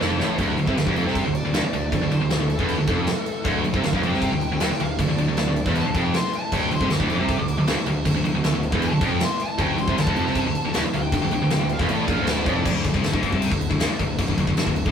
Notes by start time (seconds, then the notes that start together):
0.00 F1 F2, snare
0.20 A1 A2, snare
0.38 D1 D2, kick, crash
0.58 D1 D2, crash
0.67 C2 C3, kick
0.77 D1 D2 G4, snare, crash
0.87 D1 D2, kick
0.96 F1 F2 A4, crash
1.06 C2 C3, snare
1.15 C5, kick, crash
1.25 D1 D2
1.35 D5, crash
1.43 D1 D2
1.54 D1 D2, snare, crash
1.63 muted picked electric bass stroke, muted distorted electric guitar stroke
1.73 D1 D2, crash
1.92 D1 D2, kick, crash
2.02 D1 D2
2.11 D1 D2 C5, crash
2.21 D1 D2
2.30 D1 D2 A4, snare, crash
2.40 D1 D2
2.50 A4, crash
2.59 E1 E2, kick
2.69 crash
2.78 D1 D2
2.87 F1 F2, kick, crash
3.07 snare, crash
3.26 crash
3.45 D1 D2, kick, crash
3.64 D1 D2, crash
3.74 C2 C3, kick
3.83 D1 D2 F5, snare, crash
3.93 D1 D2, kick
4.03 F1 F2 G5, crash
4.13 C2 C3, snare
4.22 kick, crash
4.32 D1 D2
4.41 crash
4.52 D1 D2
4.60 D1 D2, snare, crash
4.71 muted distorted electric guitar stroke, muted picked electric bass stroke, snare
4.80 D1 D2 F5, crash
4.99 D1 D2 D5, kick, crash
5.09 D1 D2
5.18 D1 D2 D5, crash
5.29 D1 D2
5.37 D1 D2, snare, crash
5.47 D1 D2
5.56 crash
5.66 E1 E2, kick, snare
5.75 A5, crash
5.86 D1 D2
5.95 F1 F2 G5, kick, crash
6.14 C6, snare, crash
6.24 snare
6.33 A5, crash
6.52 D1 D2 G5, kick, crash
6.71 D1 D2 C6, crash
6.81 C2 C3, kick
6.90 D1 D2 D6, snare, crash
7.00 D1 D2, kick
7.10 F1 F2, crash
7.19 C2 C3
7.29 kick, crash
7.39 D1 D2
7.48 crash
7.58 D1 D2
7.67 D1 D2, snare, crash
7.77 muted picked electric bass stroke, muted distorted electric guitar stroke, snare
7.86 D1 D2, crash
8.05 D1 D2, kick, crash
8.16 D1 D2
8.25 D1 D2, crash
8.34 D1 D2
8.44 D1 D2, snare, crash
8.53 D1 D2
8.63 crash
8.72 E1 E2, kick
8.82 A5, crash
8.92 D1 D2
9.01 F1 F2 G5, kick, crash
9.20 C6, snare, crash
9.40 A5, crash
9.59 D1 D2 G5, kick, crash
9.78 D1 D2 C6, crash
9.88 C2 C3, kick
9.98 D1 D2 A5, snare, crash
10.07 D1 D2, kick
10.16 F1 F2, crash
10.26 C2 C3, snare
10.35 kick, crash
10.45 D1 D2
10.55 crash
10.65 D1 D2
10.74 D1 D2, snare, crash
10.84 muted distorted electric guitar stroke, muted picked electric bass stroke, snare
10.93 D1 D2 G5, crash
11.12 D1 D2, kick, crash
11.22 D1 D2
11.31 D1 D2, crash
11.42 D1 D2
11.50 D1 D2, snare, crash
11.60 D1 D2
11.69 F5, crash
11.79 E1 E2, kick, snare
11.88 A1 A2 D5, crash
12.07 A#1 A#2 F5, kick, crash
12.17 D1 D2
12.27 D5, snare, crash
12.45 F1 F2 D5, kick, crash
12.64 D1 D2, kick, crash
12.84 D1 D2, kick, crash
12.94 C2 C3, kick
13.03 D1 D2, snare, crash
13.13 D1 D2, kick
13.22 F1 F2, kick, crash
13.32 C2 C3, kick
13.42 crash
13.50 D1 D2, kick
13.61 crash
13.70 D1 D2, kick
13.79 D1 D2, snare, crash
13.90 muted distorted electric guitar stroke, muted picked electric bass stroke, snare
13.99 D1 D2, kick, crash
14.19 D1 D2, kick, crash
14.28 D1 D2, kick
14.38 D1 D2, kick, crash
14.47 D1 D2, kick
14.57 D1 D2, snare, crash
14.67 D1 D2, kick
14.76 crash
14.86 E1 E2, kick